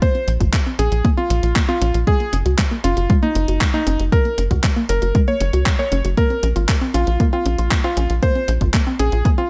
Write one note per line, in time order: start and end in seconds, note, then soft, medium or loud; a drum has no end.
0.02 0.09 A#3 loud
0.02 0.29 C5 medium
0.02 kick loud
0.02 closed hi-hat medium
0.15 0.22 C4 medium
0.15 closed hi-hat soft
0.28 0.38 A#1 medium
0.28 0.32 C#4 medium
0.28 closed hi-hat medium
0.40 0.51 G#1 medium
0.40 0.48 F4 loud
0.40 kick medium
0.40 closed hi-hat medium
0.53 0.64 A#3 medium
0.53 kick loud
0.53 clap loud
0.53 closed hi-hat medium
0.66 0.73 C4 loud
0.66 closed hi-hat soft
0.79 0.89 A#1 medium
0.79 0.90 C#4 medium
0.79 1.06 G#4 medium
0.79 closed hi-hat medium
0.92 1.02 A#1 medium
0.92 0.99 F4 medium
0.92 closed hi-hat medium
1.05 1.12 A#3 loud
1.05 kick loud
1.05 closed hi-hat medium
1.17 1.25 C4 loud
1.17 1.54 F4 medium
1.17 closed hi-hat soft
1.30 1.41 A#1 loud
1.30 1.35 C#4 medium
1.30 closed hi-hat medium
1.43 1.54 A#1 medium
1.43 1.50 F4 loud
1.43 closed hi-hat medium
1.56 1.67 A#3 medium
1.56 kick loud
1.56 clap loud
1.56 closed hi-hat medium
1.69 1.76 C4 loud
1.69 1.96 F4 loud
1.69 closed hi-hat soft
1.82 1.92 A#1 loud
1.82 1.89 C#4 loud
1.82 closed hi-hat loud
1.94 2.05 A#1 medium
1.94 2.01 F4 medium
1.94 closed hi-hat medium
2.07 2.14 G#3 loud
2.07 2.35 G#4 loud
2.07 kick loud
2.07 closed hi-hat medium
2.20 2.27 A#3 medium
2.20 closed hi-hat soft
2.33 2.43 F#1 medium
2.33 2.37 C#4 medium
2.33 closed hi-hat medium
2.46 2.56 C#2 medium
2.46 2.53 F#4 loud
2.46 closed hi-hat soft
2.58 2.69 G#3 medium
2.58 kick loud
2.58 clap loud
2.58 closed hi-hat soft
2.71 2.78 A#3 loud
2.71 closed hi-hat soft
2.84 2.95 F#1 medium
2.84 2.95 C#4 loud
2.84 3.11 F4 medium
2.84 closed hi-hat medium
2.97 3.07 F#1 medium
2.97 3.04 F#4 medium
2.97 closed hi-hat soft
3.10 3.17 G#3 loud
3.10 kick loud
3.10 closed hi-hat medium
3.23 3.30 A#3 medium
3.23 3.59 D#4 medium
3.23 closed hi-hat soft
3.35 3.46 F#1 medium
3.35 3.40 C#4 medium
3.35 closed hi-hat medium
3.48 3.59 F#1 medium
3.48 3.55 F#4 loud
3.48 closed hi-hat medium
3.61 3.72 G#3 medium
3.61 kick loud
3.61 clap loud
3.61 closed hi-hat medium
3.74 3.81 A#3 loud
3.74 4.01 D#4 loud
3.74 closed hi-hat soft
3.87 3.97 F#1 medium
3.87 3.94 C#4 loud
3.87 closed hi-hat medium
3.99 4.10 F#1 medium
3.99 4.07 F#4 medium
3.99 closed hi-hat medium
4.12 4.19 G#3 loud
4.12 4.40 A#4 loud
4.12 kick loud
4.12 closed hi-hat soft
4.25 4.32 A#3 medium
4.25 closed hi-hat soft
4.38 4.48 F#1 medium
4.38 4.42 C#4 medium
4.38 closed hi-hat medium
4.51 4.61 C#2 medium
4.51 4.58 F#4 loud
4.51 kick medium
4.51 closed hi-hat medium
4.64 4.74 G#3 medium
4.64 kick loud
4.64 clap loud
4.64 closed hi-hat soft
4.76 4.83 A#3 loud
4.76 closed hi-hat soft
4.89 5.00 F#1 loud
4.89 5.00 C#4 loud
4.89 5.17 A#4 medium
4.89 closed hi-hat medium
5.02 5.13 F#1 medium
5.02 5.09 F#4 medium
5.02 closed hi-hat soft
5.15 5.22 G#3 loud
5.15 kick loud
5.15 closed hi-hat soft
5.28 5.35 A#3 loud
5.28 5.64 C#5 medium
5.28 closed hi-hat soft
5.41 5.51 F#1 medium
5.41 5.45 C#4 medium
5.41 closed hi-hat medium
5.53 5.64 C#2 medium
5.53 5.60 F#4 loud
5.53 closed hi-hat medium
5.66 5.77 G#3 medium
5.66 kick loud
5.66 clap loud
5.66 closed hi-hat soft
5.79 5.86 A#3 loud
5.79 6.06 C#5 medium
5.79 closed hi-hat soft
5.92 6.02 F#1 loud
5.92 5.99 C#4 loud
5.92 closed hi-hat medium
6.05 6.15 F#1 medium
6.05 6.12 F#4 medium
6.05 closed hi-hat soft
6.17 6.25 A#3 loud
6.17 6.45 A#4 loud
6.17 kick loud
6.17 closed hi-hat medium
6.30 6.37 C4 medium
6.30 closed hi-hat soft
6.43 6.54 A#1 medium
6.43 6.47 C#4 medium
6.43 closed hi-hat medium
6.56 6.66 G#1 medium
6.56 6.63 F4 loud
6.56 closed hi-hat soft
6.69 6.79 A#3 medium
6.69 kick loud
6.69 clap loud
6.69 closed hi-hat soft
6.82 6.89 C4 loud
6.82 closed hi-hat soft
6.94 7.05 A#1 medium
6.94 7.05 C#4 loud
6.94 7.22 F4 medium
6.94 closed hi-hat medium
7.07 7.18 A#1 medium
7.07 7.14 F4 medium
7.07 closed hi-hat soft
7.20 7.27 A#3 loud
7.20 kick loud
7.20 closed hi-hat soft
7.33 7.40 C4 loud
7.33 7.69 F4 medium
7.33 closed hi-hat soft
7.46 7.56 A#1 loud
7.46 7.50 C#4 medium
7.46 closed hi-hat medium
7.58 7.69 A#1 medium
7.58 7.66 F4 loud
7.58 closed hi-hat soft
7.71 7.82 A#3 medium
7.71 kick loud
7.71 clap loud
7.71 closed hi-hat soft
7.84 7.91 C4 loud
7.84 8.11 F4 loud
7.84 closed hi-hat soft
7.97 8.07 A#1 loud
7.97 8.04 C#4 loud
7.97 closed hi-hat medium
8.10 8.20 A#1 medium
8.10 8.17 F4 medium
8.10 closed hi-hat medium
8.23 8.30 A#3 loud
8.23 8.50 C5 loud
8.23 kick loud
8.23 closed hi-hat soft
8.35 8.43 C4 medium
8.35 closed hi-hat soft
8.48 8.59 A#1 medium
8.48 8.52 C#4 medium
8.48 closed hi-hat medium
8.61 8.72 G#1 medium
8.61 8.68 F4 loud
8.61 kick medium
8.61 closed hi-hat medium
8.74 8.85 A#3 medium
8.74 kick loud
8.74 clap loud
8.74 closed hi-hat soft
8.87 8.94 C4 loud
8.87 closed hi-hat soft
8.99 9.10 A#1 medium
8.99 9.10 C#4 loud
8.99 9.27 G#4 medium
8.99 closed hi-hat medium
9.12 9.23 A#1 medium
9.12 9.19 F4 medium
9.12 closed hi-hat soft
9.25 9.32 A#3 loud
9.25 kick loud
9.25 closed hi-hat medium
9.38 9.45 C4 medium
9.38 9.50 F4 medium
9.38 closed hi-hat soft